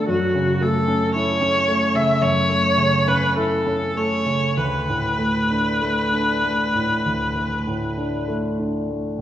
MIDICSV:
0, 0, Header, 1, 3, 480
1, 0, Start_track
1, 0, Tempo, 1067616
1, 41, Time_signature, 4, 2, 24, 8
1, 1001, Tempo, 1140684
1, 1481, Tempo, 1224490
1, 3773, End_track
2, 0, Start_track
2, 0, Title_t, "Viola"
2, 0, Program_c, 0, 41
2, 37, Note_on_c, 0, 66, 58
2, 280, Note_on_c, 0, 69, 61
2, 287, Note_off_c, 0, 66, 0
2, 515, Note_off_c, 0, 69, 0
2, 518, Note_on_c, 0, 73, 70
2, 879, Note_on_c, 0, 76, 65
2, 886, Note_off_c, 0, 73, 0
2, 999, Note_on_c, 0, 73, 71
2, 1006, Note_off_c, 0, 76, 0
2, 1358, Note_on_c, 0, 71, 61
2, 1365, Note_off_c, 0, 73, 0
2, 1481, Note_off_c, 0, 71, 0
2, 1484, Note_on_c, 0, 69, 54
2, 1719, Note_on_c, 0, 73, 63
2, 1725, Note_off_c, 0, 69, 0
2, 1952, Note_on_c, 0, 71, 51
2, 1958, Note_off_c, 0, 73, 0
2, 3407, Note_off_c, 0, 71, 0
2, 3773, End_track
3, 0, Start_track
3, 0, Title_t, "Grand piano"
3, 0, Program_c, 1, 0
3, 0, Control_c, 1, 64, 127
3, 0, Note_on_c, 1, 50, 31
3, 0, Note_on_c, 1, 57, 31
3, 0, Note_on_c, 1, 59, 35
3, 0, Note_on_c, 1, 62, 33
3, 37, Note_on_c, 1, 42, 42
3, 47, Control_c, 1, 64, 0
3, 48, Note_off_c, 1, 59, 0
3, 51, Note_off_c, 1, 57, 0
3, 52, Note_off_c, 1, 50, 0
3, 52, Note_off_c, 1, 62, 0
3, 113, Control_c, 1, 64, 127
3, 157, Note_on_c, 1, 49, 35
3, 274, Note_on_c, 1, 57, 37
3, 350, Note_off_c, 1, 49, 0
3, 393, Note_on_c, 1, 61, 31
3, 468, Note_off_c, 1, 57, 0
3, 514, Note_on_c, 1, 64, 39
3, 587, Note_off_c, 1, 61, 0
3, 635, Note_on_c, 1, 61, 34
3, 707, Note_off_c, 1, 64, 0
3, 756, Note_on_c, 1, 57, 36
3, 828, Note_off_c, 1, 61, 0
3, 876, Note_on_c, 1, 49, 33
3, 950, Note_off_c, 1, 57, 0
3, 980, Note_off_c, 1, 42, 0
3, 999, Note_on_c, 1, 42, 35
3, 1069, Note_off_c, 1, 49, 0
3, 1115, Note_on_c, 1, 57, 31
3, 1232, Note_on_c, 1, 49, 35
3, 1307, Note_off_c, 1, 57, 0
3, 1357, Note_on_c, 1, 61, 34
3, 1429, Note_off_c, 1, 49, 0
3, 1481, Note_on_c, 1, 64, 37
3, 1550, Note_off_c, 1, 61, 0
3, 1596, Note_on_c, 1, 61, 30
3, 1667, Note_off_c, 1, 64, 0
3, 1711, Note_on_c, 1, 57, 27
3, 1785, Note_off_c, 1, 61, 0
3, 1831, Note_on_c, 1, 49, 31
3, 1903, Note_off_c, 1, 57, 0
3, 1936, Note_off_c, 1, 42, 0
3, 1952, Note_off_c, 1, 49, 0
3, 1953, Note_on_c, 1, 38, 41
3, 1959, Control_c, 1, 64, 0
3, 2023, Control_c, 1, 64, 127
3, 2075, Note_on_c, 1, 45, 30
3, 2193, Note_on_c, 1, 57, 30
3, 2269, Note_off_c, 1, 45, 0
3, 2317, Note_on_c, 1, 62, 27
3, 2389, Note_off_c, 1, 57, 0
3, 2440, Note_on_c, 1, 57, 35
3, 2512, Note_off_c, 1, 62, 0
3, 2560, Note_on_c, 1, 62, 32
3, 2635, Note_off_c, 1, 57, 0
3, 2684, Note_on_c, 1, 57, 33
3, 2755, Note_off_c, 1, 62, 0
3, 2806, Note_on_c, 1, 45, 29
3, 2878, Note_off_c, 1, 57, 0
3, 2910, Note_off_c, 1, 38, 0
3, 2928, Note_on_c, 1, 38, 30
3, 2999, Note_off_c, 1, 45, 0
3, 3047, Note_on_c, 1, 57, 27
3, 3167, Note_on_c, 1, 45, 33
3, 3240, Note_off_c, 1, 57, 0
3, 3288, Note_on_c, 1, 62, 28
3, 3359, Note_off_c, 1, 45, 0
3, 3407, Note_on_c, 1, 57, 30
3, 3478, Note_off_c, 1, 62, 0
3, 3528, Note_on_c, 1, 62, 27
3, 3597, Note_off_c, 1, 57, 0
3, 3647, Note_on_c, 1, 57, 26
3, 3716, Note_off_c, 1, 62, 0
3, 3773, Note_off_c, 1, 38, 0
3, 3773, Note_off_c, 1, 57, 0
3, 3773, End_track
0, 0, End_of_file